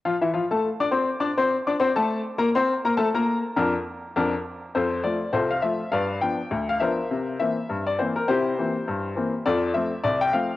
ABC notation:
X:1
M:2/4
L:1/16
Q:"Swing 16ths" 1/4=102
K:F
V:1 name="Upright piano"
[F,Ff] [E,Ee] [F,Ff] [A,Aa]2 [Ddd'] [Ccc']2 | [Ddd'] [Ccc']2 [Ddd'] [Ccc'] [A,Aa]3 | [B,Bb] [Ccc']2 [B,Bb] [A,Aa] [B,Bb]3 | [F,,F,DB]2 z2 [F,,F,DB]2 z2 |
[FAc]2 d2 [FAc] f e2 | [=Bdf]2 g3 f [_Bce]2- | [Bce]2 e3 d c B | [EGc]8 |
[FAd]2 e2 d g f2 |]
V:2 name="Upright piano" clef=bass
z8 | z8 | z8 | z8 |
F,,2 [F,A,F]2 C,,2 [F,A,F]2 | G,,2 [F,=B,D]2 D,,2 [F,B,D]2 | C,2 [E,B,C]2 G,,2 [E,B,C]2 | C,2 [E,B,C]2 G,,2 [E,B,C]2 |
F,,2 [F,A,C]2 C,,2 [F,A,C]2 |]